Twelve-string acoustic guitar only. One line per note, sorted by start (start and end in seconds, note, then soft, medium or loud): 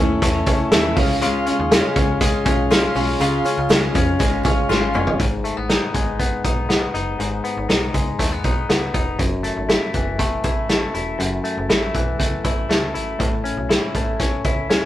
0.00 0.22 A3 medium
0.00 0.23 C#4 soft
0.00 0.22 E4 medium
0.22 0.47 E3 medium
0.22 0.48 A3 medium
0.22 0.47 C#4 medium
0.22 0.46 E4 medium
0.47 0.71 A3 medium
0.47 0.72 C#4 soft
0.47 0.72 E4 medium
0.72 0.97 A2 medium
0.72 0.97 E3 medium
0.72 0.97 A3 medium
0.72 0.97 C#4 medium
0.72 0.96 E4 medium
0.97 1.21 G#3 medium
0.97 1.22 C#4 medium
0.97 1.22 F4 medium
1.22 1.47 C#3 medium
1.22 1.47 G#3 medium
1.22 1.46 C#4 loud
1.22 1.45 F4 medium
1.47 1.71 G#3 soft
1.47 1.71 C#4 medium
1.47 1.71 F4 medium
1.72 1.96 C#3 medium
1.72 1.97 G#3 medium
1.72 1.96 C#4 loud
1.72 1.95 F4 loud
1.96 2.20 G#3 soft
1.96 2.21 C#4 medium
1.96 2.21 F4 medium
2.21 2.46 C#3 medium
2.21 2.46 G#3 medium
2.21 2.45 C#4 medium
2.21 2.44 F4 medium
2.45 2.70 G#3 medium
2.45 2.71 C#4 medium
2.45 2.70 F4 medium
2.71 2.95 C#3 medium
2.71 2.96 G#3 medium
2.71 2.95 C#4 medium
2.71 2.94 F4 medium
2.95 3.19 G#3 medium
2.95 3.20 C#4 medium
2.95 3.20 F4 medium
3.20 3.45 C#3 medium
3.20 3.45 G#3 medium
3.20 3.45 C#4 medium
3.20 3.43 F4 medium
3.44 3.69 G#3 soft
3.44 3.69 C#4 medium
3.44 3.69 F4 medium
3.69 3.94 C#3 medium
3.69 3.95 G#3 medium
3.69 3.95 C#4 loud
3.69 3.93 F4 medium
3.94 4.19 G#3 medium
3.94 4.19 C#4 medium
3.94 4.19 F4 medium
4.19 4.44 C#3 medium
4.19 4.45 G#3 medium
4.19 4.44 C#4 medium
4.19 4.42 F4 medium
4.43 4.69 G#3 medium
4.43 4.69 C#4 medium
4.43 4.69 F4 medium
4.69 4.94 C#3 medium
4.69 4.95 G#3 medium
4.69 4.94 C#4 medium
4.69 4.92 F4 medium
4.94 5.20 G#3 medium
4.94 5.20 C#4 medium
4.94 5.19 F4 medium